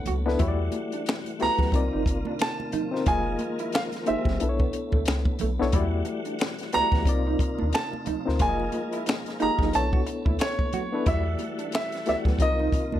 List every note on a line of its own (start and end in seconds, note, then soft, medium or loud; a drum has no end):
0.00 0.38 A3 medium
0.00 0.26 B3 medium
0.00 0.39 B3 medium
0.00 0.26 D4 medium
0.00 0.27 E4 medium
0.00 0.28 A4 medium
0.00 0.42 C#5 medium
0.06 0.37 C#2 medium
0.06 0.19 F#4 medium
0.06 closed hi-hat medium
0.06 high conga medium
0.06 low conga medium
0.26 0.37 B3 medium
0.26 0.34 D4 medium
0.26 0.38 D4 medium
0.26 0.38 E4 medium
0.26 0.38 A4 medium
0.26 0.39 B4 loud
0.26 snare soft
0.39 0.69 E2 loud
0.39 1.72 E3 medium
0.39 1.72 G3 medium
0.39 1.25 A3 medium
0.39 1.72 A3 medium
0.39 1.25 E4 medium
0.39 0.52 E4 medium
0.39 1.25 F#4 medium
0.39 1.26 G4 medium
0.39 0.48 C#5 medium
0.39 1.72 F#5 medium
0.39 kick loud
0.39 closed hi-hat medium
0.39 muted conga soft
0.39 low conga medium
0.48 1.29 D5 loud
0.72 muted clean electric guitar stroke soft
0.72 closed hi-hat medium
0.72 high conga medium
0.92 1.02 D4 medium
0.92 closed hi-hat medium
1.06 finger snap loud
1.06 muted clean electric guitar stroke soft
1.06 snare loud
1.06 closed hi-hat medium
1.25 closed hi-hat medium
1.25 muted conga soft
1.39 1.49 D2 soft
1.39 1.73 A3 medium
1.39 1.52 B3 medium
1.39 1.73 E4 medium
1.39 1.73 F#4 medium
1.39 1.74 G4 medium
1.39 1.74 B4 medium
1.39 2.44 A#5 loud
1.39 snare soft
1.39 open hi-hat medium
1.59 1.72 D2 loud
1.59 1.69 B3 medium
1.59 kick medium
1.59 snare soft
1.59 low conga medium
1.72 1.90 C2 loud
1.72 3.05 C3 medium
1.72 4.38 D#3 medium
1.72 3.05 A#3 medium
1.72 2.70 C4 medium
1.72 2.70 D#4 medium
1.72 3.05 F4 medium
1.72 2.71 F4 medium
1.72 2.71 A#4 medium
1.72 2.71 D5 medium
1.72 kick medium
1.72 closed hi-hat medium
1.72 muted conga soft
1.93 2.23 G1 medium
1.93 2.01 D#4 medium
2.06 muted clean electric guitar stroke soft
2.06 kick medium
2.06 closed hi-hat medium
2.25 2.35 D4 medium
2.25 high conga medium
2.39 3.09 A5 loud
2.39 finger snap loud
2.39 snare loud
2.39 closed hi-hat medium
2.39 muted conga soft
2.60 muted conga soft
2.60 high conga medium
2.72 2.85 D#4 medium
2.72 closed hi-hat medium
2.72 high conga medium
2.72 low conga medium
2.91 3.04 C4 medium
2.91 3.04 D#4 medium
2.91 3.04 F4 medium
2.91 3.04 A#4 medium
2.91 3.05 C5 medium
2.96 snare soft
3.06 3.36 F1 loud
3.06 4.39 F3 medium
3.06 4.39 G#3 medium
3.06 3.92 A#3 medium
3.06 3.92 F4 medium
3.06 4.39 F4 medium
3.06 3.19 F4 medium
3.06 3.92 G#4 medium
3.06 4.39 A#4 medium
3.06 3.92 A#4 medium
3.06 3.93 D#5 medium
3.06 3.76 G#5 loud
3.06 kick loud
3.06 closed hi-hat medium
3.06 low conga medium
3.39 muted clean electric guitar stroke soft
3.39 closed hi-hat medium
3.39 high conga medium
3.59 3.68 E4 medium
3.59 closed hi-hat soft
3.72 3.82 F5 medium
3.72 finger snap loud
3.72 muted clean electric guitar stroke soft
3.72 snare loud
3.72 closed hi-hat medium
3.72 muted conga soft
3.92 snare soft
3.92 closed hi-hat medium
3.92 muted conga soft
4.06 4.16 G1 soft
4.06 4.39 A#3 medium
4.06 4.18 D#4 medium
4.06 4.40 F4 medium
4.06 4.40 G4 medium
4.06 4.41 G#4 medium
4.06 4.41 C5 medium
4.06 5.36 E5 medium
4.06 closed hi-hat medium
4.25 4.38 G1 medium
4.25 4.34 C4 medium
4.25 kick medium
4.25 snare soft
4.25 low conga medium
4.40 4.70 B1 loud
4.40 5.37 B3 medium
4.40 5.72 B3 medium
4.40 5.37 D4 medium
4.40 5.37 E4 medium
4.40 5.38 A4 medium
4.40 4.49 B4 medium
4.40 closed hi-hat medium
4.49 5.41 C#5 medium
4.59 4.68 B3 medium
4.59 kick loud
4.59 muted conga soft
4.73 muted clean electric guitar stroke soft
4.73 closed hi-hat medium
4.92 5.05 D2 loud
4.92 5.02 A3 medium
4.92 kick medium
4.92 high conga medium
5.06 5.25 C#2 medium
5.06 finger snap loud
5.06 muted clean electric guitar stroke soft
5.06 snare loud
5.06 closed hi-hat medium
5.06 muted conga soft
5.25 kick loud
5.25 muted conga soft
5.25 high conga medium
5.39 5.52 A3 medium
5.39 closed hi-hat medium
5.39 high conga medium
5.39 low conga medium
5.43 5.58 B1 loud
5.59 5.73 B1 medium
5.59 5.71 B3 medium
5.59 5.68 B3 medium
5.59 5.71 D4 medium
5.59 5.72 E4 medium
5.59 5.72 A4 medium
5.59 5.72 C#5 loud
5.59 snare soft
5.72 6.03 E2 loud
5.72 7.05 E3 medium
5.72 7.05 G3 medium
5.72 7.05 A3 medium
5.72 6.58 A3 medium
5.72 5.85 E4 medium
5.72 6.59 E4 medium
5.72 6.59 F#4 medium
5.72 6.59 G4 medium
5.72 6.59 D5 loud
5.72 7.05 F#5 medium
5.72 kick loud
5.72 closed hi-hat medium
5.72 muted conga soft
5.72 low conga medium
6.05 muted clean electric guitar stroke soft
6.05 closed hi-hat medium
6.05 high conga medium
6.25 6.34 D4 medium
6.25 closed hi-hat soft
6.39 finger snap medium
6.39 muted clean electric guitar stroke soft
6.39 snare loud
6.39 closed hi-hat medium
6.39 muted conga soft
6.59 snare soft
6.59 closed hi-hat medium
6.73 6.83 D2 soft
6.73 7.07 A3 medium
6.73 6.85 B3 medium
6.73 7.07 E4 medium
6.73 7.07 F#4 medium
6.73 7.07 G4 medium
6.73 7.08 D5 medium
6.73 7.70 A#5 loud
6.73 snare soft
6.73 closed hi-hat medium
6.92 7.08 D2 medium
6.92 7.01 B3 medium
6.92 kick medium
6.92 snare soft
6.92 low conga medium
7.05 7.36 C2 loud
7.05 8.39 C3 medium
7.05 8.39 A#3 medium
7.05 8.04 C4 medium
7.05 9.71 D#4 medium
7.05 8.04 D#4 medium
7.05 8.39 F4 medium
7.05 8.04 F4 medium
7.05 8.05 A#4 medium
7.05 8.05 D5 medium
7.05 kick medium
7.05 closed hi-hat medium
7.05 muted conga soft
7.27 7.35 D#4 medium
7.39 muted clean electric guitar stroke soft
7.39 kick medium
7.39 closed hi-hat medium
7.59 7.73 D#2 medium
7.59 7.68 D4 medium
7.59 high conga medium
7.73 8.42 A5 loud
7.73 finger snap loud
7.73 snare loud
7.73 closed hi-hat medium
7.93 muted conga soft
7.93 high conga medium
8.06 8.16 D2 soft
8.06 8.19 D#4 medium
8.06 closed hi-hat medium
8.06 high conga medium
8.06 low conga medium
8.26 8.40 D2 medium
8.26 8.37 C4 medium
8.26 8.38 D#4 medium
8.26 8.38 F4 medium
8.26 8.38 A#4 medium
8.26 8.39 C5 medium
8.26 snare soft
8.39 8.69 F1 loud
8.39 9.73 F3 medium
8.39 9.72 G#3 medium
8.39 9.25 A#3 medium
8.39 8.52 F4 medium
8.39 9.25 F4 medium
8.39 9.73 F4 medium
8.39 9.26 G#4 medium
8.39 9.73 A#4 medium
8.39 9.26 A#4 medium
8.39 8.49 D5 medium
8.39 9.44 G#5 loud
8.39 kick loud
8.39 closed hi-hat loud
8.39 muted conga soft
8.39 low conga medium
8.49 9.30 D#5 medium
8.60 muted conga soft
8.72 muted clean electric guitar stroke soft
8.72 closed hi-hat medium
8.72 high conga medium
8.92 9.01 E4 medium
8.92 closed hi-hat medium
9.06 finger snap loud
9.06 muted clean electric guitar stroke soft
9.06 snare loud
9.06 closed hi-hat medium
9.06 muted conga soft
9.25 snare soft
9.25 closed hi-hat medium
9.25 muted conga soft
9.40 9.50 G1 soft
9.40 9.73 A#3 medium
9.40 9.51 D#4 medium
9.40 9.73 F4 medium
9.40 9.74 G4 medium
9.40 9.74 G#4 medium
9.40 9.75 D#5 medium
9.40 9.75 A#5 loud
9.40 closed hi-hat medium
9.59 9.72 G1 medium
9.59 9.68 D#4 medium
9.59 kick medium
9.59 snare soft
9.59 low conga medium
9.73 10.03 B1 loud
9.73 11.06 A3 medium
9.73 10.70 B3 medium
9.73 11.06 B3 medium
9.73 10.70 D4 medium
9.73 10.71 E4 medium
9.73 10.71 A4 medium
9.73 10.71 C#5 medium
9.73 10.43 A5 loud
9.73 closed hi-hat medium
9.73 muted conga soft
9.93 10.01 F#4 medium
9.93 kick loud
10.07 muted clean electric guitar stroke soft
10.07 closed hi-hat medium
10.25 10.39 D2 loud
10.25 10.34 E4 medium
10.25 kick loud
10.25 high conga medium
10.39 11.09 C#5 loud
10.39 finger snap loud
10.39 muted clean electric guitar stroke soft
10.39 snare loud
10.39 closed hi-hat medium
10.59 kick loud
10.59 high conga medium
10.73 10.85 F#4 medium
10.73 closed hi-hat medium
10.73 high conga medium
10.73 low conga medium
10.92 11.04 B3 medium
10.92 11.04 D4 medium
10.92 11.02 D4 medium
10.92 11.05 E4 medium
10.92 11.05 A4 medium
10.92 11.05 B4 medium
11.06 11.36 E2 loud
11.06 12.39 E3 medium
11.06 12.39 G3 medium
11.06 11.92 A3 medium
11.06 11.18 E4 medium
11.06 11.92 E4 medium
11.06 11.93 F#4 medium
11.06 11.93 G4 medium
11.06 12.39 A4 medium
11.06 11.93 D5 medium
11.06 11.74 E5 loud
11.06 12.39 F#5 medium
11.06 kick loud
11.06 closed hi-hat medium
11.06 muted conga soft
11.06 low conga medium
11.39 muted clean electric guitar stroke soft
11.39 closed hi-hat medium
11.39 high conga medium
11.59 11.67 D4 medium
11.59 closed hi-hat medium
11.72 12.07 E5 loud
11.72 finger snap loud
11.72 muted clean electric guitar stroke soft
11.72 snare loud
11.72 closed hi-hat medium
11.72 muted conga soft
11.92 snare soft
11.92 closed hi-hat medium
12.06 12.16 D2 soft
12.06 12.40 A3 medium
12.06 12.19 B3 medium
12.06 12.40 E4 medium
12.06 12.40 F#4 medium
12.06 12.41 G4 medium
12.06 12.41 D5 medium
12.06 12.16 E5 loud
12.06 snare soft
12.06 closed hi-hat medium
12.25 12.38 D2 loud
12.25 12.35 B3 medium
12.25 kick loud
12.25 snare soft
12.25 low conga medium
12.39 12.69 C2 loud
12.39 13.00 C3 medium
12.39 13.00 D#3 medium
12.39 13.00 A#3 medium
12.39 13.00 C4 medium
12.39 13.00 D#4 medium
12.39 13.00 F4 medium
12.39 13.00 A#4 medium
12.39 13.00 D#5 loud
12.39 13.00 D#5 medium
12.39 kick medium
12.39 closed hi-hat medium
12.60 12.68 D#4 medium
12.60 muted conga soft
12.72 muted clean electric guitar stroke soft
12.72 kick loud
12.72 closed hi-hat medium
12.92 13.00 D#2 loud
12.92 13.00 D4 medium
12.92 high conga medium